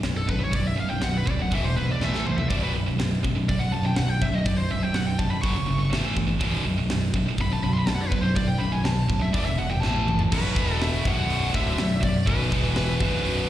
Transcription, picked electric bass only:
0.04 0.28 B0 medium
0.29 0.53 B0 medium
0.54 0.77 B0 medium
0.78 1.02 B0 medium
1.04 1.26 B0 medium
1.27 1.51 D1 medium
1.51 1.75 E1 medium
1.77 2.00 B1 medium
2.01 2.24 A1 medium
2.26 2.49 C2 medium
2.50 2.73 B0 medium
2.75 2.98 B0 medium
3.00 3.23 B0 medium
3.25 3.47 B0 medium
3.49 3.72 B0 medium
3.74 3.96 B0 medium
3.97 4.20 B0 medium
4.22 4.45 B0 medium
4.46 4.69 B0 medium
4.72 4.94 B0 medium
4.96 5.19 B0 medium
5.19 5.43 B0 medium
5.44 5.67 F#1 medium
5.69 5.92 G1 medium
5.94 6.16 A1 medium
6.17 6.40 G1 medium
6.41 6.65 B0 medium
6.65 6.89 B0 medium
6.90 7.13 B0 medium
7.14 7.38 B0 medium
7.39 7.62 B0 medium
7.64 7.87 B0 loud
7.88 8.11 B0 medium
8.12 8.35 B0 medium
8.36 8.60 B0 medium
8.62 8.85 B0 medium
8.86 9.09 B0 medium
9.09 9.33 D1 medium
9.34 9.58 E1 medium
9.61 9.85 E1 loud
9.85 10.08 A1 medium
10.10 10.31 G1 medium
10.32 10.55 B0 loud
10.56 11.02 E1 loud
11.05 11.51 B0 loud
11.55 11.77 D1 loud
11.79 12.01 B0 medium
12.03 12.26 B0 medium
12.27 12.50 B0 loud
12.52 12.98 E1 loud
13.00 13.46 B0 loud

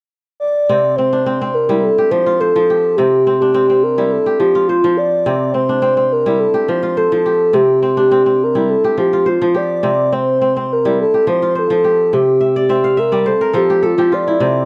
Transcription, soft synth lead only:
0.40 0.97 D5 medium
0.96 1.56 C5 loud
1.54 1.85 A#4 medium
1.84 2.12 A4 loud
2.11 2.41 C5 medium
2.40 2.98 A4 loud
2.97 3.40 G4 loud
3.41 3.85 G4 medium
3.83 4.13 A#4 medium
4.12 4.38 A4 medium
4.39 4.69 G4 medium
4.68 4.99 F4 medium
4.97 5.53 D5 loud
5.54 6.14 C5 loud
6.12 6.41 A#4 medium
6.39 6.68 A4 medium
6.69 6.98 C5 medium
6.97 7.56 A4 medium
7.55 7.98 G4 loud
7.99 8.45 G4 medium
8.43 8.71 A#4 medium
8.70 8.97 A4 medium
9.00 9.30 G4 medium
9.29 9.57 F4 medium
9.56 10.15 D5 medium
10.13 10.74 C5 medium
10.73 10.99 A#4 medium
11.00 11.25 A4 medium
11.29 11.54 C5 medium
11.58 12.16 A4 medium
12.14 12.56 G4 medium
12.58 13.00 G4 medium
12.99 13.29 A#4 medium
13.27 13.58 A4 medium
13.56 13.87 G4 medium
13.85 14.15 F4 medium
14.13 14.65 D5 medium

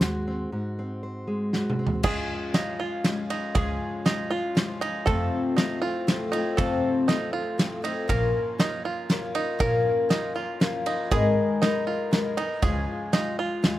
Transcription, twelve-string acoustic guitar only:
2.03 2.54 C#3 medium
2.03 2.53 F3 medium
2.03 2.54 G#3 medium
2.03 2.54 C#4 medium
2.03 2.56 F4 medium
2.54 3.04 F3 medium
2.54 3.04 G#3 medium
2.54 3.05 C#4 medium
2.54 3.06 F4 medium
3.04 3.55 F3 medium
3.04 3.54 G#3 medium
3.04 3.55 C#4 medium
3.04 3.56 F4 medium
3.54 4.06 C#3 medium
3.54 4.04 F3 medium
3.54 4.05 G#3 medium
3.54 4.05 C#4 medium
3.54 4.07 F4 medium
4.05 4.31 F3 medium
4.05 4.31 G#3 medium
4.05 4.30 C#4 medium
4.05 4.29 F4 medium
4.30 4.55 G#3 soft
4.30 4.56 C#4 medium
4.30 4.56 F4 medium
4.55 5.06 F3 medium
4.55 5.06 G#3 medium
4.55 5.07 C#4 medium
4.55 5.07 F4 medium
5.06 5.57 F2 medium
5.06 5.57 C3 medium
5.06 5.56 F3 medium
5.06 5.56 A3 medium
5.06 5.57 C4 medium
5.06 5.59 F4 medium
5.56 5.82 F3 medium
5.56 5.83 A3 medium
5.56 5.82 C4 medium
5.56 5.81 F4 medium
5.82 6.06 F3 soft
5.82 6.07 A3 soft
5.82 6.08 C4 soft
5.82 6.07 F4 medium
6.07 6.33 F3 medium
6.07 6.33 A3 medium
6.07 6.32 C4 medium
6.07 6.31 F4 medium
6.32 6.57 F3 soft
6.32 6.58 A3 medium
6.32 6.58 C4 medium
6.32 6.58 F4 soft
6.58 7.08 F2 medium
6.58 7.08 C3 medium
6.58 7.07 F3 medium
6.58 7.07 A3 medium
6.58 7.08 C4 medium
6.58 7.10 F4 medium
7.08 7.57 F3 medium
7.08 7.57 A3 medium
7.08 7.59 C4 medium
7.08 7.60 F4 medium
7.58 7.84 F3 medium
7.58 7.83 A3 medium
7.58 7.82 C4 medium
7.58 7.81 F4 medium
7.82 8.07 F3 soft
7.82 8.09 A3 soft
7.82 8.09 C4 soft
7.82 8.08 F4 soft
8.08 8.59 A#2 medium
8.08 8.57 F3 medium
8.08 8.59 A#3 medium
8.08 8.59 C#4 medium
8.08 8.60 F4 medium
8.58 9.08 F3 medium
8.58 9.10 A#3 medium
8.58 9.10 C#4 medium
8.58 9.11 F4 medium
9.09 9.58 F3 medium
9.09 9.59 A#3 medium
9.09 9.59 C#4 medium
9.09 9.59 F4 medium
9.59 10.10 A#2 medium
9.59 10.08 F3 medium
9.59 10.10 A#3 medium
9.59 10.10 C#4 medium
9.59 10.10 F4 medium
10.09 10.35 F3 medium
10.09 10.36 A#3 medium
10.09 10.35 C#4 medium
10.09 10.33 F4 medium
10.35 10.60 A#3 soft
10.35 10.61 C#4 soft
10.35 10.60 F4 medium
10.60 11.11 F3 medium
10.60 11.11 A#3 medium
10.60 11.12 C#4 medium
10.60 11.12 F4 medium
11.11 11.62 G#2 medium
11.11 11.62 D#3 medium
11.11 11.61 G#3 medium
11.11 11.62 B3 medium
11.11 11.62 D#4 medium
11.11 11.62 A#4 medium
11.62 12.11 G#3 medium
11.62 12.11 B3 medium
11.62 12.12 D#4 medium
11.62 12.13 A#4 medium
12.11 12.37 G#3 medium
12.11 12.38 B3 medium
12.11 12.37 D#4 medium
12.11 12.36 A#4 medium
12.37 12.62 G#3 soft
12.37 12.63 B3 soft
12.37 12.63 D#4 medium
12.37 12.63 A#4 medium
12.62 13.13 C#3 medium
12.62 13.11 F3 medium
12.62 13.12 G#3 medium
12.62 13.13 F4 medium
12.62 13.14 G#4 medium
13.12 13.61 F3 medium
13.12 13.62 G#3 medium
13.12 13.63 F4 medium
13.12 13.64 G#4 medium
13.63 13.79 F3 medium
13.63 13.79 G#3 medium
13.63 13.79 F4 medium
13.63 13.79 G#4 medium

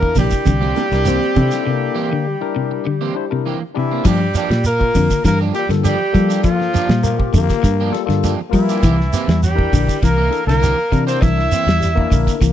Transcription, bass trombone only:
0.76 0.90 A#3 medium
1.07 1.34 C4 loud
1.37 1.70 C4 medium
1.69 2.29 A#3 medium
2.28 3.47 G3 medium
7.03 7.16 A#3 loud
7.33 7.96 A#3 loud
7.95 8.39 G3 medium
11.80 11.95 G3 medium
11.95 12.37 A#3 loud
12.39 12.53 A#3 loud

